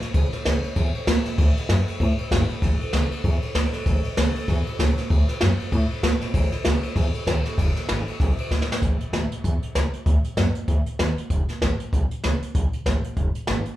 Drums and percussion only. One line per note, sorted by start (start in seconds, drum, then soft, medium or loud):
0.01 snare soft
0.01 ride medium
0.14 kick loud
0.14 snare soft
0.14 ride medium
0.33 snare soft
0.33 ride medium
0.45 snare loud
0.45 ride medium
0.63 ride medium
0.76 kick loud
0.76 snare soft
0.76 ride medium
0.95 ride medium
1.07 kick medium
1.07 snare loud
1.07 ride medium
1.25 snare soft
1.25 ride medium
1.38 kick loud
1.38 snare soft
1.38 ride loud
1.57 snare soft
1.57 ride medium
1.69 snare loud
1.69 ride medium
1.88 ride medium
2.00 kick loud
2.00 ride medium
2.18 ride medium
2.31 kick medium
2.31 snare loud
2.31 ride medium
2.49 ride medium
2.62 kick loud
2.62 snare soft
2.62 ride medium
2.81 ride medium
2.93 snare loud
2.93 ride medium
3.11 ride medium
3.24 kick loud
3.24 ride medium
3.42 ride medium
3.55 kick medium
3.55 snare loud
3.55 ride medium
3.73 snare soft
3.73 ride medium
3.86 kick loud
3.86 snare soft
3.86 ride medium
4.04 ride medium
4.17 snare loud
4.17 ride medium
4.35 ride medium
4.48 kick loud
4.48 snare soft
4.48 ride medium
4.66 ride medium
4.79 kick medium
4.79 snare loud
4.79 ride medium
4.98 snare soft
4.98 ride medium
5.10 kick loud
5.10 ride medium
5.28 snare soft
5.28 ride medium
5.41 snare loud
5.41 ride medium
5.59 ride medium
5.72 kick loud
5.72 ride medium
5.90 ride medium
6.03 kick medium
6.03 snare loud
6.03 ride medium
6.21 snare soft
6.21 ride medium
6.34 kick loud
6.34 snare soft
6.34 ride loud
6.52 snare soft
6.52 ride medium
6.65 snare loud
6.65 ride medium
6.83 ride medium
6.96 kick loud
6.96 snare soft
6.96 ride medium
7.14 ride medium
7.27 kick medium
7.27 snare loud
7.27 ride medium
7.45 snare soft
7.45 ride medium
7.58 kick loud
7.58 snare soft
7.58 ride medium
7.76 snare soft
7.76 ride medium
7.89 snare loud
7.89 ride medium
8.07 ride medium
8.20 kick loud
8.20 snare soft
8.20 ride medium
8.38 ride medium
8.51 kick medium
8.51 snare medium
8.62 snare medium
8.72 snare loud
8.82 kick loud
8.82 closed hi-hat medium
9.00 closed hi-hat medium
9.13 kick medium
9.13 snare loud
9.13 closed hi-hat medium
9.32 closed hi-hat medium
9.44 kick loud
9.44 closed hi-hat medium
9.63 closed hi-hat medium
9.75 snare loud
9.75 closed hi-hat medium
9.93 closed hi-hat medium
10.06 kick loud
10.06 closed hi-hat medium
10.24 closed hi-hat medium
10.37 kick medium
10.37 snare loud
10.37 closed hi-hat medium
10.55 closed hi-hat medium
10.68 kick loud
10.68 closed hi-hat medium
10.86 closed hi-hat medium
10.99 snare loud
10.99 closed hi-hat medium
11.18 closed hi-hat medium
11.30 kick loud
11.30 closed hi-hat medium
11.49 snare soft
11.49 closed hi-hat medium
11.62 kick medium
11.62 snare loud
11.62 closed hi-hat medium
11.80 closed hi-hat medium
11.93 kick loud
11.93 closed hi-hat medium
12.11 closed hi-hat medium
12.24 snare loud
12.24 closed hi-hat medium
12.42 closed hi-hat medium
12.55 kick loud
12.55 closed hi-hat medium
12.73 closed hi-hat medium
12.86 kick medium
12.86 snare loud
12.86 closed hi-hat medium
13.04 closed hi-hat medium
13.17 kick loud
13.17 closed hi-hat medium
13.35 closed hi-hat medium
13.47 snare loud
13.47 closed hi-hat medium
13.65 closed hi-hat medium